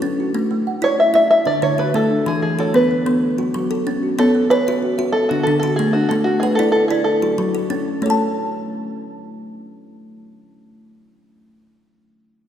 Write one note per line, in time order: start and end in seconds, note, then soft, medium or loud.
0.00 0.34 C#4 medium
0.00 0.35 C#4 medium
0.00 0.19 F#4 medium
0.00 0.35 A4 medium
0.00 0.36 A4 medium
0.00 0.16 C#5 medium
0.20 0.67 F#4 medium
0.34 0.67 A3 medium
0.51 0.83 A3 medium
0.67 1.15 F#5 medium
0.82 1.13 E4 medium
0.82 0.99 C#5 medium
0.82 1.14 D5 medium
0.99 1.31 E4 medium
0.99 1.14 E5 medium
1.14 1.30 E4 medium
1.14 1.63 D5 medium
1.14 1.29 E5 loud
1.31 1.46 E5 loud
1.45 1.78 D3 medium
1.45 1.94 D4 medium
1.45 1.62 D5 loud
1.62 1.94 D3 medium
1.62 2.09 D4 medium
1.62 1.79 C#5 medium
1.78 2.26 F#4 medium
1.78 1.95 B4 medium
1.94 2.26 A3 medium
1.94 2.27 A4 medium
2.10 2.58 D4 medium
2.26 2.58 E3 medium
2.26 2.41 G#4 medium
2.26 2.59 A4 medium
2.42 2.74 E3 medium
2.42 2.57 G#4 medium
2.59 3.07 F#4 medium
2.59 2.76 A4 medium
2.59 3.07 C#5 medium
2.74 3.05 B3 medium
2.74 3.06 A4 medium
2.74 3.67 B4 medium
2.91 3.23 B3 medium
3.06 3.22 B3 medium
3.06 3.55 A4 medium
3.38 3.71 F#3 medium
3.38 3.86 F#4 medium
3.54 3.86 F#3 medium
3.54 4.02 F#4 medium
3.71 4.19 A4 medium
3.87 4.19 C#4 medium
4.03 4.51 F#4 medium
4.19 4.51 B3 medium
4.19 4.50 A4 medium
4.19 4.51 C#5 medium
4.35 4.67 B3 medium
4.50 5.10 B4 loud
4.50 4.99 C#5 medium
4.50 4.98 G#5 medium
4.67 4.98 F#4 medium
4.67 4.97 E5 medium
4.82 5.14 F#4 medium
4.98 5.15 F#4 medium
4.98 5.46 E5 medium
5.12 5.30 A4 loud
5.29 5.63 D3 medium
5.29 5.79 D4 medium
5.29 5.46 F#4 medium
5.43 5.79 D3 medium
5.43 5.94 D4 medium
5.43 5.58 A4 medium
5.60 6.11 F#4 medium
5.60 5.76 A4 medium
5.76 6.11 A3 medium
5.76 6.10 A3 medium
5.76 5.94 G#4 medium
5.93 6.43 D4 medium
5.93 6.10 F#4 medium
6.09 6.43 A3 medium
6.09 6.14 A4 medium
6.09 6.42 A4 medium
6.24 6.59 A3 medium
6.24 6.40 F#4 medium
6.40 6.55 G#4 medium
6.40 6.91 B4 medium
6.40 6.91 F#5 medium
6.55 6.89 E4 medium
6.55 6.71 A4 medium
6.59 6.90 D5 medium
6.72 7.07 E4 medium
6.72 6.88 A4 medium
6.88 7.07 E4 medium
6.88 7.04 G#4 medium
6.88 7.39 D5 medium
7.04 7.65 A4 medium
7.22 7.54 F#3 medium
7.22 7.70 F#4 medium
7.38 7.70 F#3 medium
7.38 7.86 F#4 medium
7.55 8.03 A4 medium
7.70 8.02 C#4 medium
7.70 8.03 C#4 medium
8.02 11.65 A3 medium
8.02 11.66 A3 medium
8.02 11.69 A4 medium
8.02 8.35 C#5 medium
8.07 11.71 A4 medium
8.07 11.73 A5 medium
8.11 11.75 A5 medium